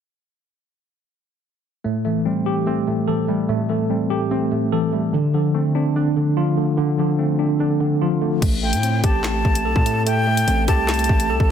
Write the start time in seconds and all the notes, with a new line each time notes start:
1.84 A2 A3
2.05 E3 A3
2.25 G3 C4
2.46 A3 G4
2.66 A3 C4
2.87 A2 A3
3.08 E3 A4
3.28 G3 A3
3.49 A2 A3
3.69 E3 A3
3.90 G3 C4
4.10 A3 G4
4.31 A3 C4
4.52 A2 A3
4.72 E3 A4
4.93 G3 A3
5.13 D3
5.34 D3 F3
5.54 A3 C4
5.75 C4 D4
5.96 D3 D4
6.16 D3
6.37 F3 F4
6.57 D3 A3
6.78 D3
6.98 D3 F3
7.19 A3 C4
7.39 C4 D4
7.59 D3 D4
7.80 D3
8.01 F3 F4
8.21 D3 A3
8.42 A1 A3, kick, closed hi-hat, crash
8.63 A3 G5
8.73 A2, closed hi-hat
8.83 C4, closed hi-hat
9.04 A1 G4 A5, kick, closed hi-hat
9.24 A3, snare, clap
9.45 A1 A3, kick
9.55 closed hi-hat
9.65 B1 A4
9.76 A2, kick
9.86 A3, closed hi-hat
10.06 A3 G5, closed hi-hat
10.27 A3
10.37 closed hi-hat
10.47 A1 C4, closed hi-hat
10.68 C2 G4 A5, kick, closed hi-hat
10.88 A3, snare, clap, closed hi-hat
10.94 closed hi-hat
10.99 closed hi-hat
11.04 closed hi-hat
11.09 A1 A3, kick
11.20 closed hi-hat
11.30 C2 A4
11.40 A1, kick